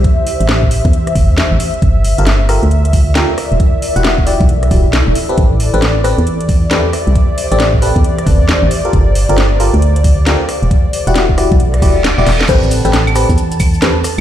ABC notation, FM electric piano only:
X:1
M:4/4
L:1/16
Q:"Swing 16ths" 1/4=135
K:Am
V:1 name="FM electric piano"
z16 | z3 [FGA_B] z2 [FGAB] z4 z [FGAB] z3 | z3 [E^FG^f]2 z [EFGd] z3 [EFGd] z4 [CGAB]- | [CGAB] z2 [CGAB] z2 [CGAB] z4 z [CGAB] z3 |
z3 [CGAd]2 z [CGAB] z3 [CGAB] z4 [FGA_B]- | [FGA_B] z2 [FGAB] z2 [FGAB] z4 z [FGAB] z3 | z3 [E^FG^f]2 z [EFGd] z3 [EFGd] z2 [EFGd] z2 | [CGAB]3 [CGAB] z2 [CGAB] z4 z [CGAB] z3 |]